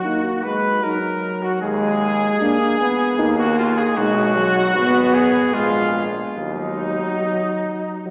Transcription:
Already playing: trumpet F#4, cornet F#4
0.04 trombone A#3, french horn D#4
0.44 trombone G#3, trumpet B4, cornet B4
0.83 trombone F#3, french horn D#4, cornet A#4, trumpet A#4
1.43 trumpet F#4, cornet F#4
1.62 bass trombone D#2, trombone G#3, trumpet G#4, cornet G#4
2.40 trombone A#3, french horn D4
2.80 trombone B3
3.18 bass trombone D#2, trombone A#3, french horn D#4
3.38 trumpet F#4, cornet F#4
3.58 trumpet F4, cornet F4
3.77 trumpet G#4, cornet G#4
3.96 bass trombone B1, trombone G#3, french horn D#4, trumpet F#4, cornet F#4
4.36 trombone F#3
4.75 bass trombone G#1, trombone B3, french horn B3
5.14 trumpet G#4, cornet G#4
5.53 bass trombone A#1, trombone G#3, french horn G#3, cornet F4, trumpet F4
6.35 bass trombone D#2, trombone F#3, trumpet D#4, cornet D#4
7.21 french horn F#3
8.06 french horn F#3

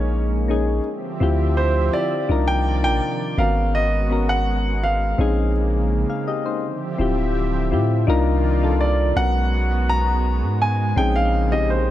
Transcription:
Already playing: 808-style bass A#1, analog synth pad G#3 A#3 C#4, synth keys A#3 C#4 D#4 G#4, grand piano C#5
0.48 synth keys A#3 C#4 D#4 G#4
0.84 analog synth pad D3 F3 C4 G4 E5
1.20 808-style bass D2, synth keys C4 E4 F4 G4
1.57 grand piano C5
1.93 synth keys C4 E4 F4 G4, grand piano D5
2.29 808-style bass C2, analog synth pad C3 D#3 A#3 D5, synth keys D4 D#4 F4 A#4
2.48 grand piano G5
2.83 808-style bass A#1, synth keys D4 D#4 F4 A#4, grand piano G5
3.37 808-style bass G#1, analog synth pad G#3 B3 F#4, synth keys B3 C#4 F#4 A#4, grand piano F5
3.75 grand piano D#5
4.10 synth keys B3 C#4 F#4 A#4
4.29 grand piano F#5
4.83 grand piano F5
5.18 808-style bass A#1, analog synth pad C#3 A#3, synth keys C4 C#4 D#4 G#4
6.10 synth keys G#4 F5
6.28 synth keys G4 D#5
6.46 synth keys D#4 C5
6.63 analog synth pad D3 F3 C4 G4 E5
6.98 808-style bass D1, synth keys C4 E4 F4 G4
7.71 808-style bass A2, synth keys C4 E4 F4 G4
8.07 808-style bass C2, analog synth pad C3 D#3 A#3 F4 D5, synth keys D4 D#4 F4 A#4
8.62 synth keys D4 D#4 F4 A4
8.81 grand piano D5
9.16 808-style bass B1, analog synth pad G#3 B3 F#4, synth keys B3 C#4 F#4 A#4, grand piano F#5
9.89 grand piano A#5
10.43 808-style bass G#2
10.62 grand piano G#5
10.96 808-style bass A#1, analog synth pad C#3 A#3, synth keys C4 C#4 D#4 G#4, grand piano G5
11.16 grand piano F5
11.51 synth keys C4 C#4 D#4 G4, grand piano D#5
11.70 grand piano C5

